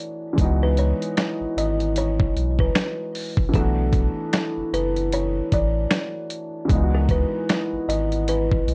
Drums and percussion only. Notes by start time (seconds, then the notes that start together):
0.38 kick, closed hi-hat
0.77 closed hi-hat
1.02 closed hi-hat
1.17 finger snap, snare, closed hi-hat
1.58 closed hi-hat
1.80 closed hi-hat
1.96 closed hi-hat
2.20 kick
2.37 closed hi-hat
2.59 kick
2.75 finger snap, snare, closed hi-hat
3.15 open hi-hat
3.37 kick
3.54 kick, closed hi-hat
3.93 kick, closed hi-hat
4.33 finger snap, snare, closed hi-hat
4.74 closed hi-hat
4.96 closed hi-hat
5.12 closed hi-hat
5.52 kick, closed hi-hat
5.91 finger snap, snare, closed hi-hat
6.30 closed hi-hat
6.70 kick, closed hi-hat
7.09 kick, closed hi-hat
7.49 finger snap, snare, closed hi-hat
7.90 closed hi-hat
8.12 closed hi-hat
8.28 closed hi-hat
8.52 kick
8.68 closed hi-hat